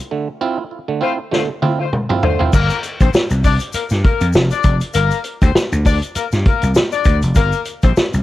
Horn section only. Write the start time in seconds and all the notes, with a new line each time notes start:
1.02 A3 F4 C5
1.32 A3 F4 C5
1.80 A3 F4 C5
2.23 A3 F4 C5
2.54 A#3 A#4
3.01 C4 C5
3.45 D4 D5
3.74 A#3 A#4
4.04 A#3 A#4
4.51 D4 D5
4.94 A#3 A#4
5.43 C4 C5
5.86 D4 D5
6.16 A#3 A#4
6.46 A#3 A#4
6.93 D4 D5
7.36 A#3 A#4
7.83 C4 C5